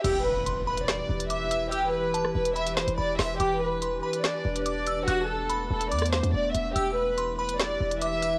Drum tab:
CC |x-----------------------------------------------|------------------------------------------------|------------------------------------------------|------------------------------------------------|
HH |x-----------x--------x-----------x--x-----x-----|x-----------x--------x--x--x-----x--------o-----|x-----------x--------x-----------x--x-----x-----|x-----------x--------x--x-x-x----x--------x-----|
SD |------------------------o-----------------------|---------------r--------------o-----------o-----|------------------------o-----------------------|---------------------------r--o-----------------|

CC |------------------------------------------------|
HH |x-----------x--------x-----------x--x-----x-----|
SD |------------------------o-----------------------|